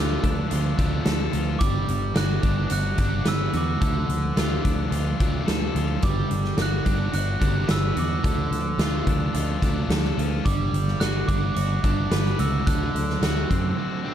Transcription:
Already playing: D2 D3 F3 A3 D4 F4 D6
0.22 D2 D3 F3 D4, kick, closed hi-hat
0.50 D2 D3 F3 F4, closed hi-hat
0.77 D2 D3 F3 A3 D4, kick, closed hi-hat
1.04 D2 D3 F3 A4, snare, closed hi-hat
1.31 D2 D3 F3 F4, closed hi-hat
1.59 G1 G2 D3 G3 D6, kick, closed hi-hat
1.88 G1 G2 D3, closed hi-hat
2.14 G1 G2 D3 F#4 F#6, snare, closed hi-hat
2.41 G1 G2 D3 G3 D4, kick, closed hi-hat
2.70 G1 G2 D3 F#4 F#6, closed hi-hat
2.97 G1 G2 D3 G3 D4, kick, closed hi-hat
3.25 G1 G2 D3 B4 E6, snare, closed hi-hat
3.53 E2 G2 D3 F#4 D6, closed hi-hat
3.80 D2 D3 F3 A3, kick, closed hi-hat
4.09 D2 D3 F3, closed hi-hat
4.36 D2 D3 F3 A3 F4, snare, closed hi-hat
4.63 D2 D3 F3 D4, kick, closed hi-hat
4.90 D2 D3 F3 F4, closed hi-hat
5.17 D2 D3 D4, kick, closed hi-hat
5.22 F3 A3
5.46 D2 D3 F3 A4, snare, closed hi-hat
5.74 D2 D3 F3 F4, closed hi-hat
6.02 G1 G2 D3 G3 D6, kick, closed hi-hat
6.30 G1 G2 D3, closed hi-hat
6.45 snare
6.57 G1 G2 D3 F#4, snare, closed hi-hat
6.62 F#6
6.84 G1 G2 D3 G3 D4, kick, closed hi-hat
7.12 G1 G2 D3 F#4 F#6, closed hi-hat
7.40 G1 G2 D3 G3 D4, kick, closed hi-hat
7.68 G1 G2 D3 B4 E6, snare, closed hi-hat
7.95 E2 G2 D3 F#4, closed hi-hat
7.99 D6
8.23 D2 D3 F3 A3, kick, closed hi-hat
8.51 D2 D3 F3, closed hi-hat
8.78 D2 D3 F3 A3 F4, snare, closed hi-hat
9.05 D2 D3 F3 D4, kick, closed hi-hat
9.33 D2 D3 F3 F4, closed hi-hat
9.62 D2 D3 F3 A3 D4, kick, closed hi-hat
9.89 D2 D3 F3 A4, snare, closed hi-hat
10.04 snare
10.17 D2 D3 F3 F4, closed hi-hat
10.45 G1 G2 D3 G3 D6, kick, closed hi-hat
10.72 G1 G2 D3, closed hi-hat
10.88 snare
11.00 G1 G2 D3 F#4 F#6, snare, closed hi-hat
11.28 G1 G2 D3 G3 D4 D6, kick, closed hi-hat
11.54 G1 G2 D3 F#4 D6, closed hi-hat
11.84 G1 G2 D3 G3 D4, kick, closed hi-hat
12.11 G1 G2 D3 B4, snare, closed hi-hat
12.26 snare
12.39 C#2 G2 D3 F#4 E6, closed hi-hat
12.67 D2 D3 F#3 A3 F#6, kick, closed hi-hat
12.94 D2 D3 F#3, closed hi-hat
13.10 snare
13.22 D2 D3 F#3 A3 F#4, snare, closed hi-hat
13.49 F#2 D3 F#3 C4, kick, closed hi-hat
13.77 D3 F#3 F#4
14.04 D3 F#3 A3 C4

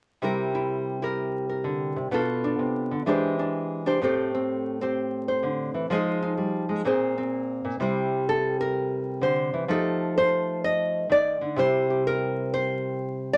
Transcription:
0.22 C3 G3 E4 G4 A#4
0.55 E4
1.02 E4 G4 A#4
1.49 A#4
1.64 D3
1.96 C3
2.11 B2 B3 D4 F4 A4
2.44 D4
2.59 C3
2.91 D3
3.06 E3 G#3 D4 G4 C5
3.39 D4
3.86 D4 G4 C5
4.01 A2 A3 C4 G4 C5
4.35 C4
4.81 C4 G4 C5
5.28 C5
5.43 D3
5.74 E3
5.90 F3 G#3 D#4 G#4 C5
6.22 D#4
6.38 G3
6.69 G#3
6.85 A#2 A#3 C4 G#4 C5
7.18 C4
7.65 A#2
7.80 C3 G3 E4 G4 C5
8.29 A4
8.61 A#4
9.21 D3 C5
9.54 E3
9.68 F3 A3 D#4 G4 A4
10.18 C5
10.64 D#5
11.09 D#3 D5
11.41 D3
11.56 C3 G3 E4 G4 C5
11.90 G4
12.07 A#4
12.54 C5
13.33 D5

